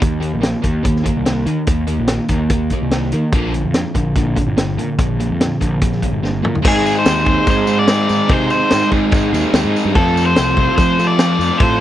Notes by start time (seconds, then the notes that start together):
0.00 D#2 D#3 A#3, kick, closed hi-hat
0.20 D#3 A#3, closed hi-hat
0.34 A#1
0.42 D#3 A#3, snare, closed hi-hat
0.63 D#2 D#3 A#3, kick, closed hi-hat
0.84 D#2 D#3 A#3, kick, closed hi-hat
0.96 snare
1.04 D#3 A#3, kick, closed hi-hat
1.17 C2
1.26 D#3 A#3, snare, closed hi-hat
1.46 D#3 A#3, closed hi-hat
1.67 D#2 D#3 A#3, kick, closed hi-hat
1.87 D#3 A#3, closed hi-hat
1.99 A#1
2.07 D#3 A#3, snare, closed hi-hat
2.28 D#2 D#3 A#3, kick, closed hi-hat
2.50 D#2 D#3 A#3, kick, closed hi-hat
2.70 D#3 A#3, kick, closed hi-hat
2.82 C2
2.91 D#3 A#3, snare, closed hi-hat
3.12 D#3 A#3, closed hi-hat
3.32 A#1 A#2 D3 A#3, kick, closed hi-hat
3.54 A#2 D3, closed hi-hat
3.64 F2
3.74 A#2 D3, snare, closed hi-hat
3.95 A#1 A#2 D3, kick, closed hi-hat
4.16 A#1 A#2 D3, kick, closed hi-hat
4.36 A#2 D3, kick, closed hi-hat
4.47 G1
4.57 A#2 D3, snare, closed hi-hat
4.78 A#2 D3, closed hi-hat
4.98 A#1 A#2 D3, kick, closed hi-hat
5.20 A#2 D3, closed hi-hat
5.30 F2
5.41 A#2 D3, snare, closed hi-hat
5.60 A#1 A#2 D3, kick, closed hi-hat
5.81 A#1 A#2 D3, kick, closed hi-hat
5.92 snare
6.02 A#2 D3, kick, closed hi-hat
6.13 G1
6.23 A#2 D3, snare
6.43 A#2 D3, mid tom
6.55 floor tom
6.63 G#2 D#3 G#3 C4 D#4 G#4, kick, crash, tambourine
6.67 G#4
6.86 tambourine
6.99 C5
7.06 D#2, snare, tambourine, crash
7.25 D#2 G#2 D#3 G#3 C4 D#4 G#4, kick, tambourine
7.47 G#2 C5, kick, tambourine, crash
7.67 G#3 C4 D#4 G#4, tambourine
7.79 D5
7.87 G#2 D#3 G#3 C4 D#4 G#4, snare, tambourine, crash
8.09 G#2, tambourine
8.28 G#2 C3 D#3 G#3 C4 D#4 G#4 C5, kick, tambourine, crash
8.50 C5, tambourine
8.71 G#2, snare, tambourine, crash
8.92 G#2 D#3 G#3 C4 D#4 G#4, kick, tambourine
9.12 G#2, kick, tambourine, crash
9.33 D#2 G#3 C4 D#4 G#4, snare, tambourine
9.54 D#2 G#2 D#3 G#3 C4 D#4 G#4, snare, tambourine, crash
9.65 G#2
9.76 tambourine
9.85 G2
9.94 F2 F3 A3 C4 F4 A4, kick, tambourine, crash
9.99 A4
10.17 tambourine
10.26 C5
10.36 C2, snare, tambourine, crash
10.57 C2 F3 A3 C4 F4, kick, tambourine
10.76 F3 C5, kick, tambourine, crash
10.98 F3 C4 F4 A4, snare, tambourine
11.07 D5
11.18 F3 A3 C4 F4 A4, snare, tambourine, crash
11.39 F2, tambourine
11.58 A2 F3 A3 C4 F4 C5, kick, crash
11.62 F4 A4